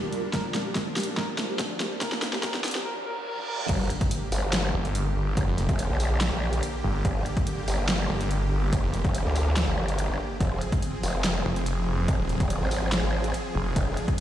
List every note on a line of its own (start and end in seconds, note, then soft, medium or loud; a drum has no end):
0.00 2.81 A#2 medium
0.00 0.30 G3 medium
0.00 2.85 G3 medium
0.00 2.81 D4 medium
0.00 2.85 F4 loud
0.00 0.09 G4 medium
0.00 2.85 A#4 medium
0.00 0.75 D5 medium
0.00 riser medium
0.12 0.20 G3 medium
0.12 closed hi-hat medium
0.23 0.30 G3 medium
0.33 2.83 F3 medium
0.33 0.41 A#4 medium
0.33 kick loud
0.33 snare medium
0.33 closed hi-hat medium
0.44 0.51 D4 medium
0.54 0.62 D4 medium
0.54 snare medium
0.54 closed hi-hat medium
0.62 0.72 G4 medium
0.62 2.85 C5 medium
0.75 0.83 D4 medium
0.75 kick medium
0.75 snare medium
0.75 closed hi-hat medium
0.86 0.93 D4 medium
0.96 1.04 G4 medium
0.96 snare medium
0.96 closed hi-hat medium
0.96 open hi-hat medium
1.03 1.14 D4 medium
1.03 closed hi-hat medium
1.17 1.25 A#4 loud
1.17 kick loud
1.17 snare medium
1.28 1.35 D4 medium
1.38 1.46 D4 medium
1.38 snare medium
1.38 closed hi-hat medium
1.49 1.56 G4 medium
1.59 1.67 D4 medium
1.59 kick loud
1.59 snare medium
1.59 closed hi-hat medium
1.70 1.77 D4 medium
1.80 1.88 G4 medium
1.80 snare medium
1.80 closed hi-hat medium
1.91 1.98 D4 medium
2.01 2.09 A#4 loud
2.01 kick loud
2.01 snare medium
2.01 closed hi-hat medium
2.12 2.19 D4 medium
2.12 snare medium
2.22 2.29 D4 medium
2.22 snare loud
2.22 closed hi-hat medium
2.33 2.40 G4 medium
2.33 snare medium
2.43 2.50 A#4 loud
2.43 kick loud
2.43 snare medium
2.43 closed hi-hat medium
2.54 2.61 D4 medium
2.54 snare medium
2.64 2.71 D4 medium
2.64 snare loud
2.64 closed hi-hat medium
2.64 open hi-hat medium
2.71 2.82 G4 medium
2.71 snare medium
2.71 closed hi-hat medium
2.85 2.92 A#4 loud
2.85 reverse cymbal medium
2.96 3.03 D4 medium
3.06 3.13 A#4 loud
3.17 3.24 D4 medium
3.27 3.34 A#4 loud
3.38 3.45 D4 medium
3.48 3.55 A#4 loud
3.59 3.66 D4 medium
3.69 3.89 G1 loud
3.69 10.36 D3 medium
3.69 10.36 A#3 medium
3.69 10.36 G4 medium
3.69 kick loud
3.69 closed hi-hat medium
3.69 crash loud
3.69 impact medium
3.90 closed hi-hat medium
4.01 kick loud
4.01 closed hi-hat medium
4.11 closed hi-hat medium
4.32 4.72 G1 loud
4.32 open hi-hat loud
4.53 snare loud
4.53 closed hi-hat medium
4.74 5.14 G1 loud
4.85 closed hi-hat medium
4.95 closed hi-hat medium
5.16 5.35 G1 loud
5.37 5.46 G1 loud
5.37 kick loud
5.37 closed hi-hat medium
5.48 5.67 F1 loud
5.58 closed hi-hat medium
5.69 5.88 F1 medium
5.69 kick loud
5.69 closed hi-hat medium
5.79 closed hi-hat medium
5.90 6.30 A#1 loud
6.00 open hi-hat loud
6.21 snare loud
6.21 closed hi-hat medium
6.32 6.61 A#1 loud
6.53 closed hi-hat medium
6.63 closed hi-hat medium
6.84 7.03 G1 loud
7.05 7.24 G1 loud
7.05 kick loud
7.05 closed hi-hat medium
7.26 closed hi-hat medium
7.37 kick loud
7.37 closed hi-hat medium
7.47 closed hi-hat medium
7.68 8.08 G1 medium
7.68 open hi-hat medium
7.89 snare loud
7.89 closed hi-hat medium
8.10 8.50 G1 medium
8.21 closed hi-hat medium
8.31 closed hi-hat medium
8.52 8.71 G1 loud
8.73 8.82 G1 loud
8.73 kick loud
8.73 closed hi-hat medium
8.84 9.03 F1 medium
8.94 closed hi-hat medium
9.04 9.24 F1 medium
9.04 kick loud
9.04 closed hi-hat medium
9.15 closed hi-hat medium
9.26 9.66 D2 loud
9.36 open hi-hat medium
9.57 snare loud
9.57 closed hi-hat medium
9.67 10.08 G1 loud
9.88 closed hi-hat medium
9.98 closed hi-hat medium
10.09 10.18 G1 loud
10.40 10.60 F1 loud
10.40 14.20 F3 medium
10.40 13.73 C4 medium
10.40 14.20 G#4 medium
10.40 kick loud
10.40 closed hi-hat medium
10.61 closed hi-hat medium
10.72 kick loud
10.72 closed hi-hat medium
10.82 closed hi-hat medium
11.03 11.44 F1 medium
11.03 open hi-hat medium
11.24 snare loud
11.24 closed hi-hat medium
11.45 11.86 F1 loud
11.56 closed hi-hat medium
11.66 closed hi-hat medium
11.87 12.07 F1 loud
12.08 12.17 F1 loud
12.08 kick loud
12.08 closed hi-hat medium
12.19 12.38 D#1 loud
12.29 closed hi-hat medium
12.40 12.59 D#1 medium
12.40 kick loud
12.40 closed hi-hat soft
12.50 closed hi-hat medium
12.61 13.01 G#1 loud
12.71 open hi-hat medium
12.92 snare loud
12.92 closed hi-hat medium
13.03 13.33 G#1 loud
13.24 closed hi-hat medium
13.34 closed hi-hat medium
13.55 13.75 F1 loud
13.76 13.96 F1 loud
13.76 14.20 D4 medium
13.76 kick loud
13.76 closed hi-hat medium
13.97 closed hi-hat medium
14.08 kick loud
14.08 closed hi-hat medium